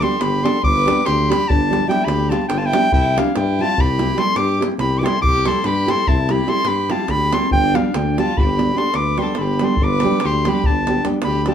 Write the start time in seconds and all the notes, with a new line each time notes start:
0.00 G3 B3 D4 G4 A4 C6, davul high
0.11 davul high
0.19 G1 G4 B5, davul high
0.34 davul high
0.43 G3 B3 D4 G4 A4 C6, davul high
0.62 G1 B4 D6, davul low
0.76 davul high
0.85 G3 B3 D4 G4, davul high
0.98 davul high
1.06 D2 G4 C6, davul high
1.29 G3 B3 D4 G4 B5, davul high
1.41 davul high
1.48 G1 D4 A5, davul low
1.70 G3 B3 D4 G4, davul high
1.87 G3 B3 D4 E4 G4 G5, davul high
2.01 davul high
2.05 D2 G4 B5, davul high
2.20 davul high
2.29 G3 B3 D4 F4 G4 A5, davul high
2.42 davul high
2.49 G1 D4 G5, davul high
2.57 F4 A5
2.63 E4 G5, davul high
2.73 G3 B3 D4 G4, davul high
2.92 C2 E4 G5, davul low
3.05 davul high
3.16 G3 C4 D4 E4 G4 F5, davul high
3.27 davul high
3.36 G2 E4 G5, davul high
3.59 G3 C4 E4 F4 G4 A5
3.69 davul high
3.78 C2 G4 B5, davul low
3.98 G3 C4 E4 G4, davul high
4.17 G3 C4 E4 G4 A4 C6, davul high
4.27 davul high
4.36 G2 G4 D6, davul high
4.49 davul high
4.59 G3 C4 E4 G4, davul high
4.71 davul high
4.78 C2 G4 B5, davul high
4.93 davul high
4.98 G3 B4 D6
5.02 C4 E4 G4 A4 C6, davul high
5.21 C2 G4 D6, davul low
5.35 davul high
5.45 G3 C4 E4 G4 A4 C6, davul high
5.55 davul high
5.64 G2 G4 B5, davul high
5.76 davul high
5.85 G3 C4 E4 G4 A4, davul high
5.90 C6
5.98 davul high
6.07 C2 E4 A5, davul low
6.18 davul high
6.28 G3 C4 E4 G4 B5, davul high
6.39 davul high
6.47 G3 C4 E4 G4 A4 C6, davul high
6.56 davul high
6.64 G2 G4 B5, davul high
6.89 G3 C4 E4 F4 G4 A5, davul high
6.99 davul high
7.08 D2 G4 B5, davul high, davul low
7.20 davul high
7.32 G3 C4 E4 G4 A4 C6, davul high
7.41 davul high
7.50 G1 D4 G5, davul low
7.63 davul high
7.74 G3 B3 D4 G4 F5, davul high
7.85 davul high
7.94 D2 D4 G5, davul high
8.18 G3 B3 D4 F4 G4 A5, davul high
8.28 davul high
8.37 G1 G4 B5, davul low
8.58 G3 B3 D4 G4, davul high
8.75 G3 B3 D4 G4 A4 C6, davul high
8.87 davul high
8.94 D2 B4 D6, davul high
9.07 davul high
9.17 G3 B3 D4 G4 C6, davul high
9.22 A4
9.27 davul high
9.35 G1 B5, davul high
9.42 G4
9.48 davul high
9.59 G3 B3 D4 G4, davul high
9.64 A4 C6
9.77 G1, davul low
9.83 B4 D6
9.89 davul high
10.00 G3 B3, davul high
10.05 D4 G4
10.11 davul high
10.20 davul high
10.24 D2 G4 C6
10.45 G3 B3 D4 G4 B5, davul high
10.55 davul high
10.64 G1 D4 A5, davul low
10.87 G3 B3 D4 G4, davul high
11.04 G3 B3 D4 G4, davul high
11.14 davul high
11.22 D2 G4 B5, davul high
11.35 davul high
11.46 G3 B3 D4 G4 A5, davul high
11.51 F4